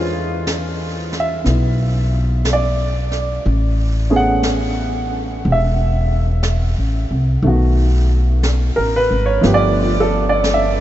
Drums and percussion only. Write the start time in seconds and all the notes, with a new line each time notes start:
0.47 brush sweep, snare, hi-hat pedal
1.12 snare
1.45 brush sweep, snare
2.45 brush sweep, snare, hi-hat pedal
3.11 snare
3.44 brush sweep
4.43 brush sweep, snare, hi-hat pedal
5.44 brush sweep
6.43 brush sweep, snare, hi-hat pedal
7.42 brush sweep
8.43 brush sweep, snare, hi-hat pedal
9.43 brush sweep, snare
10.44 brush sweep, snare, hi-hat pedal